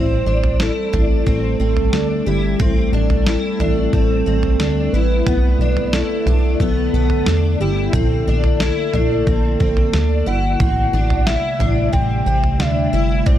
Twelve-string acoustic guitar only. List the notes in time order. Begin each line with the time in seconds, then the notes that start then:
Already playing: C4
0.26 D4
0.60 E4
0.93 D4
1.26 C4
1.60 C4
1.93 D4
2.26 E4
2.59 C4
2.93 D4
3.26 E4
3.60 D4
3.93 C4
4.26 C4
4.60 D4
4.94 E4
5.27 B3
5.61 D4
5.94 E4
6.27 D4
6.61 B3
6.94 B3
7.28 D4
7.61 E4
7.94 C4
8.27 D4
8.61 E4
8.94 D4
9.27 C4
9.60 C4
9.93 D4
10.26 E4
10.60 C4
10.93 D4
11.27 E4
11.60 D4
11.93 C4
12.26 C4
12.60 D4
12.93 E4
13.26 C4